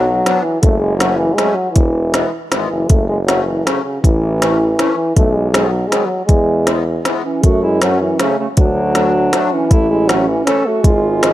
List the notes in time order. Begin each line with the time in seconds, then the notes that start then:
Already playing: B1 F#3
0.25 F#3 B3 D4, snare, closed hi-hat
0.42 E3
0.62 F#1 A3, kick, closed hi-hat
0.80 G#3
0.97 F#3 A3, snare, closed hi-hat
1.02 C#4
1.16 E3
1.34 F#3 G#3
1.38 A3 C#4, snare, closed hi-hat
1.55 F#3
1.71 E3
1.76 E1, kick, closed hi-hat
2.13 E3 G#3 B3, snare, closed hi-hat
2.50 G#1 E3 G#3 B3, snare, closed hi-hat
2.68 F#1 E3
2.88 F#1 A3, kick, closed hi-hat
3.08 G#3
3.26 F#3 A3 C#4, snare, closed hi-hat
3.45 E3
3.64 C#3 F#3 A3 C#4, snare, closed hi-hat
3.83 C#3
4.01 A1 E3, kick, closed hi-hat
4.39 E3 A3 C#4, snare, closed hi-hat
4.77 E3 A3 C#4, snare, closed hi-hat
4.96 E3
5.16 B1 A3, kick, closed hi-hat
5.33 G#3
5.51 D#3 F#3 G#3 B3, snare, closed hi-hat
5.70 F#3
5.87 D#3 F#3 G#3
5.92 B3, snare, closed hi-hat
6.05 F#3
6.26 E2 G#3, kick, closed hi-hat
6.65 E3 G#3 B3, snare, closed hi-hat
7.04 E3 G#3 B3, snare, closed hi-hat
7.24 E3 C#4
7.42 F#2 A3 F#4, kick, closed hi-hat
7.64 G#3 E4
7.82 F#3 A3 C#4, snare, closed hi-hat
8.00 E3 C#4
8.19 C#3 F#3 A3 C#4, snare, closed hi-hat
8.39 C#3 A3
8.57 D2 F#3 D4, kick, closed hi-hat
8.94 F#3 A3 D4, snare, closed hi-hat
9.32 F#3 A3 D4, snare, closed hi-hat
9.51 E3 C#4
9.69 A1 A3 E4, kick, closed hi-hat
9.89 G#3 E4
10.08 E3 F#3 A3 C#4, snare, closed hi-hat
10.28 E3 C#4
10.44 E3 A3 C#4 A4, snare, closed hi-hat
10.66 A3 F#4
10.82 G#1 G#3, kick, closed hi-hat
10.87 F4
11.21 F3 G#3 C#4, snare, closed hi-hat